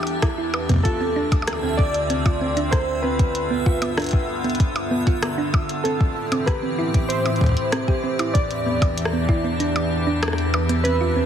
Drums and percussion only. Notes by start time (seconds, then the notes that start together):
0.03 closed hi-hat, percussion blips
0.22 kick, cross-stick, closed hi-hat, percussion blips
0.54 percussion blips
0.69 kick, closed hi-hat
0.72 kick
0.74 kick
0.76 kick
0.78 kick
0.81 kick
0.83 kick
0.85 kick, closed hi-hat
1.32 kick, closed hi-hat, percussion blips
1.42 percussion blips
1.47 cross-stick, closed hi-hat
1.53 percussion blips
1.79 kick
1.94 closed hi-hat
2.10 closed hi-hat
2.26 kick, closed hi-hat, percussion blips
2.57 closed hi-hat
2.73 kick, cross-stick, closed hi-hat
3.19 kick, closed hi-hat
3.35 closed hi-hat
3.66 kick
3.82 closed hi-hat, percussion blips
3.98 cross-stick, closed hi-hat
4.00 closed hi-hat
4.02 closed hi-hat
4.04 closed hi-hat
4.07 closed hi-hat
4.09 closed hi-hat
4.11 kick, closed hi-hat
4.44 closed hi-hat
4.50 closed hi-hat
4.55 closed hi-hat
4.60 kick, closed hi-hat
4.76 closed hi-hat, percussion blips
5.07 kick, closed hi-hat
5.23 cross-stick, closed hi-hat, percussion blips
5.54 kick, percussion blips
5.69 closed hi-hat
5.85 closed hi-hat
6.01 kick
6.32 closed hi-hat, percussion blips
6.47 kick, cross-stick, closed hi-hat
6.94 kick, closed hi-hat
7.10 closed hi-hat
7.26 closed hi-hat, percussion blips
7.36 closed hi-hat
7.41 kick
7.44 kick
7.46 kick, closed hi-hat
7.49 kick
7.52 kick
7.54 kick, closed hi-hat
7.72 cross-stick, closed hi-hat
7.88 kick
8.19 closed hi-hat, percussion blips
8.35 kick, closed hi-hat
8.51 closed hi-hat
8.82 kick, closed hi-hat, percussion blips
8.98 closed hi-hat
9.05 cross-stick
9.29 kick
9.60 closed hi-hat
9.76 closed hi-hat, percussion blips
10.23 cross-stick, closed hi-hat, percussion blips
10.28 cross-stick
10.33 cross-stick
10.38 closed hi-hat
10.54 percussion blips
10.69 closed hi-hat
10.85 closed hi-hat